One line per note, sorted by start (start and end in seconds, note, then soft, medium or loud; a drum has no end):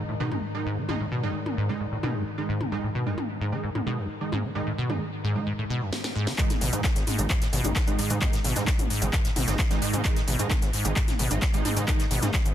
0.00 5.47 G#2 medium
0.00 5.47 D#3 medium
0.09 0.15 A2 medium
0.20 0.33 B2 loud
0.20 0.39 D#3 medium
0.20 0.39 G#3 medium
0.20 0.39 D#4 medium
0.32 0.41 F#2 loud
0.32 mid tom medium
0.55 0.66 D#3 medium
0.55 0.66 G#3 medium
0.55 0.66 D#4 medium
0.66 0.79 G#2 loud
0.77 0.84 D#3 medium
0.89 0.95 G#2 medium
0.89 1.01 D#3 medium
0.89 1.01 G#3 medium
0.89 1.01 D#4 loud
0.89 mid tom medium
1.00 1.07 A2 medium
1.12 1.25 B2 loud
1.23 1.33 F#2 loud
1.23 1.35 D#3 medium
1.23 1.35 G#3 medium
1.23 1.35 D#4 medium
1.46 mid tom medium
1.57 1.70 G#2 loud
1.69 1.75 D#3 medium
1.69 1.81 D#3 medium
1.69 1.81 G#3 medium
1.69 1.81 D#4 medium
1.80 1.87 G#2 medium
1.92 1.98 A2 medium
2.03 2.16 B2 loud
2.03 2.22 D#3 medium
2.03 2.22 G#3 medium
2.03 2.22 D#4 medium
2.03 mid tom medium
2.15 2.24 F#2 loud
2.38 2.49 D#3 medium
2.38 2.49 G#3 medium
2.38 2.49 D#4 medium
2.49 2.62 G#2 loud
2.61 2.67 D#3 medium
2.61 mid tom medium
2.72 2.78 G#2 medium
2.72 2.84 D#3 medium
2.72 2.84 G#3 medium
2.72 2.84 D#4 loud
2.84 2.90 A2 medium
2.95 3.08 B2 loud
3.06 3.16 F#2 loud
3.06 3.18 D#3 medium
3.06 3.18 G#3 medium
3.06 3.18 D#4 medium
3.18 mid tom medium
3.41 3.54 G#2 loud
3.52 3.58 D#3 medium
3.52 3.64 D#3 medium
3.52 3.64 G#3 medium
3.52 3.64 D#4 medium
3.64 3.70 G#2 medium
3.75 3.81 A2 medium
3.75 mid tom medium
3.86 4.00 B2 loud
3.86 4.05 D#3 medium
3.86 4.05 G#3 medium
3.86 4.05 D#4 medium
3.98 4.07 F#2 loud
4.21 4.32 D#3 medium
4.21 4.32 G#3 medium
4.21 4.32 D#4 medium
4.32 4.45 G#2 loud
4.32 mid tom medium
4.44 4.50 D#3 medium
4.55 4.62 G#2 medium
4.55 4.67 D#3 medium
4.55 4.67 G#3 medium
4.55 4.67 D#4 loud
4.67 4.73 A2 medium
4.78 4.91 B2 loud
4.90 4.99 F#2 loud
4.90 5.01 D#3 medium
4.90 5.01 G#3 medium
4.90 5.01 D#4 medium
4.90 mid tom medium
5.24 5.37 G#2 loud
5.35 5.47 D#3 medium
5.35 5.42 D#3 medium
5.35 5.47 G#3 medium
5.35 5.47 D#4 medium
5.47 5.53 G#2 medium
5.58 5.65 A2 medium
5.70 5.83 B2 loud
5.81 5.91 F#2 loud
5.93 snare medium
6.04 snare medium
6.16 6.29 G#2 loud
6.27 6.33 D#3 medium
6.27 snare medium
6.38 6.45 G#2 medium
6.38 6.50 D#3 loud
6.38 6.50 G#3 medium
6.38 6.50 D#4 loud
6.38 kick loud
6.38 clap loud
6.38 closed hi-hat medium
6.38 shaker medium
6.49 6.56 A2 medium
6.49 snare medium
6.49 closed hi-hat medium
6.49 mid tom medium
6.49 shaker soft
6.61 6.70 G#1 loud
6.61 6.74 B2 loud
6.61 closed hi-hat medium
6.61 open hi-hat loud
6.73 6.82 F#2 loud
6.73 6.81 G#2 medium
6.73 6.84 D#3 medium
6.73 6.84 G#3 medium
6.73 6.84 D#4 medium
6.73 closed hi-hat soft
6.73 closed hi-hat medium
6.73 shaker medium
6.84 kick loud
6.84 snare loud
6.84 clap loud
6.84 closed hi-hat medium
6.84 shaker medium
6.96 7.04 G#1 medium
6.96 snare medium
6.96 closed hi-hat medium
6.96 shaker soft
7.07 7.20 G#2 loud
7.07 closed hi-hat medium
7.07 open hi-hat medium
7.07 mid tom medium
7.19 7.27 G#1 medium
7.19 7.30 D#3 medium
7.19 7.25 D#3 medium
7.19 7.30 G#3 medium
7.19 7.30 D#4 medium
7.19 closed hi-hat medium
7.19 shaker medium
7.30 7.36 G#2 medium
7.30 kick loud
7.30 clap loud
7.30 closed hi-hat medium
7.30 shaker medium
7.42 7.48 A2 medium
7.42 snare medium
7.42 closed hi-hat medium
7.42 shaker soft
7.53 7.61 G#1 loud
7.53 7.66 B2 loud
7.53 closed hi-hat medium
7.53 open hi-hat loud
7.64 7.73 G#1 medium
7.64 7.74 F#2 loud
7.64 7.76 D#3 medium
7.64 7.76 G#3 medium
7.64 7.76 D#4 loud
7.64 closed hi-hat medium
7.64 mid tom medium
7.64 shaker medium
7.76 kick loud
7.76 snare loud
7.76 clap loud
7.76 closed hi-hat medium
7.76 shaker medium
7.87 7.96 G#1 medium
7.87 7.97 D#3 loud
7.87 7.97 G#3 medium
7.87 7.97 D#4 loud
7.87 closed hi-hat medium
7.87 shaker soft
7.99 8.12 G#2 loud
7.99 8.08 D#3 medium
7.99 8.08 G#3 medium
7.99 8.09 D#4 medium
7.99 closed hi-hat medium
7.99 open hi-hat loud
8.10 8.19 G#2 medium
8.10 8.20 D#3 loud
8.10 8.17 D#3 medium
8.10 8.20 G#3 medium
8.10 8.20 D#4 loud
8.10 closed hi-hat medium
8.10 shaker medium
8.21 8.28 G#2 medium
8.21 8.33 D#3 loud
8.21 8.33 G#3 medium
8.21 8.33 D#4 loud
8.21 kick loud
8.21 clap loud
8.21 closed hi-hat medium
8.21 mid tom medium
8.21 shaker soft
8.33 8.39 A2 medium
8.33 snare medium
8.33 closed hi-hat medium
8.33 shaker soft
8.44 8.53 G#1 loud
8.44 8.58 B2 loud
8.44 closed hi-hat medium
8.44 open hi-hat loud
8.56 8.65 F#2 loud
8.56 8.64 G#2 medium
8.56 8.68 D#3 medium
8.56 8.68 G#3 medium
8.56 8.68 D#4 medium
8.56 snare medium
8.56 closed hi-hat medium
8.56 shaker medium
8.67 kick loud
8.67 snare loud
8.67 clap loud
8.67 closed hi-hat medium
8.67 shaker medium
8.79 8.87 G#1 medium
8.79 closed hi-hat medium
8.79 mid tom medium
8.79 shaker soft
8.90 9.03 G#2 loud
8.90 closed hi-hat medium
8.90 open hi-hat loud
9.02 9.10 G#1 medium
9.02 9.13 D#3 medium
9.02 9.08 D#3 medium
9.02 9.13 G#3 medium
9.02 9.13 D#4 medium
9.02 closed hi-hat medium
9.02 shaker medium
9.13 9.20 G#2 medium
9.13 kick loud
9.13 clap loud
9.13 closed hi-hat medium
9.13 shaker medium
9.25 9.31 A2 medium
9.25 snare soft
9.25 closed hi-hat medium
9.25 shaker soft
9.36 9.45 G#1 medium
9.36 9.49 B2 loud
9.36 closed hi-hat medium
9.36 open hi-hat loud
9.36 mid tom medium
9.48 9.56 G#1 medium
9.48 9.57 F#2 loud
9.48 9.59 D#3 medium
9.48 9.59 G#3 medium
9.48 9.59 D#4 loud
9.48 snare medium
9.48 closed hi-hat medium
9.48 shaker medium
9.59 kick loud
9.59 snare loud
9.59 clap loud
9.59 closed hi-hat medium
9.59 shaker medium
9.70 9.79 G#1 medium
9.70 9.80 D#3 loud
9.70 9.80 G#3 medium
9.70 9.80 D#4 loud
9.70 snare medium
9.70 closed hi-hat medium
9.70 shaker soft
9.82 9.95 G#2 loud
9.82 9.92 D#3 medium
9.82 9.92 G#3 medium
9.82 9.92 D#4 medium
9.82 closed hi-hat medium
9.82 open hi-hat loud
9.93 10.02 G#2 medium
9.93 10.03 D#3 loud
9.93 10.00 D#3 medium
9.93 10.03 G#3 medium
9.93 10.03 D#4 loud
9.93 closed hi-hat medium
9.93 mid tom medium
9.93 shaker medium
10.04 10.11 G#2 medium
10.04 10.17 D#3 loud
10.04 10.17 G#3 medium
10.04 10.17 D#4 loud
10.04 kick loud
10.04 clap loud
10.04 closed hi-hat medium
10.04 shaker medium
10.16 10.23 A2 medium
10.16 snare soft
10.16 closed hi-hat medium
10.16 shaker soft
10.27 10.36 G#1 medium
10.27 10.41 B2 loud
10.27 closed hi-hat medium
10.27 open hi-hat loud
10.39 10.49 F#2 loud
10.39 10.48 G#2 medium
10.39 10.51 D#3 medium
10.39 10.51 G#3 medium
10.39 10.51 D#4 medium
10.39 closed hi-hat medium
10.39 closed hi-hat soft
10.39 shaker medium
10.50 kick loud
10.50 snare loud
10.50 clap loud
10.50 closed hi-hat medium
10.50 mid tom medium
10.50 shaker medium
10.62 10.71 G#1 medium
10.62 snare soft
10.62 closed hi-hat medium
10.62 shaker soft
10.73 10.87 G#2 loud
10.73 closed hi-hat medium
10.73 open hi-hat loud
10.85 10.93 G#1 medium
10.85 10.97 D#3 medium
10.85 10.91 D#3 medium
10.85 10.97 G#3 medium
10.85 10.97 D#4 medium
10.85 closed hi-hat medium
10.85 shaker medium
10.96 11.03 G#2 medium
10.96 kick loud
10.96 clap loud
10.96 closed hi-hat medium
10.96 shaker medium
11.08 11.14 A2 medium
11.08 snare soft
11.08 closed hi-hat medium
11.08 mid tom medium
11.08 shaker soft
11.19 11.28 G#1 loud
11.19 11.32 B2 loud
11.19 closed hi-hat medium
11.19 open hi-hat loud
11.31 11.39 G#1 medium
11.31 11.40 F#2 loud
11.31 11.42 D#3 medium
11.31 11.42 G#3 medium
11.31 11.42 D#4 loud
11.31 closed hi-hat medium
11.31 shaker medium
11.42 kick loud
11.42 snare loud
11.42 clap loud
11.42 closed hi-hat medium
11.42 shaker medium
11.54 11.62 G#1 medium
11.54 11.63 D#3 loud
11.54 11.63 G#3 medium
11.54 11.63 D#4 loud
11.54 closed hi-hat medium
11.54 shaker soft
11.65 11.78 G#2 loud
11.65 11.75 D#3 medium
11.65 11.75 G#3 medium
11.65 11.75 D#4 medium
11.65 closed hi-hat medium
11.65 open hi-hat loud
11.65 mid tom medium
11.77 11.85 G#2 medium
11.77 11.86 D#3 medium
11.77 11.83 D#3 medium
11.77 11.86 G#3 medium
11.77 11.86 D#4 loud
11.77 closed hi-hat medium
11.77 shaker medium
11.88 11.94 G#2 medium
11.88 12.00 D#3 loud
11.88 12.00 G#3 medium
11.88 12.00 D#4 loud
11.88 kick loud
11.88 clap loud
11.88 closed hi-hat medium
11.88 shaker medium
11.99 12.06 A2 medium
11.99 snare soft
11.99 closed hi-hat medium
11.99 shaker soft
12.11 12.19 G#1 medium
12.11 12.24 B2 loud
12.11 closed hi-hat medium
12.11 open hi-hat loud
12.22 12.32 F#2 loud
12.22 12.31 G#2 medium
12.22 12.34 D#3 medium
12.22 12.34 G#3 medium
12.22 12.34 D#4 medium
12.22 snare medium
12.22 closed hi-hat medium
12.22 mid tom medium
12.22 shaker medium
12.34 kick loud
12.34 snare loud
12.34 clap loud
12.34 closed hi-hat medium
12.34 shaker medium
12.45 12.54 G#1 medium
12.45 closed hi-hat medium
12.45 shaker soft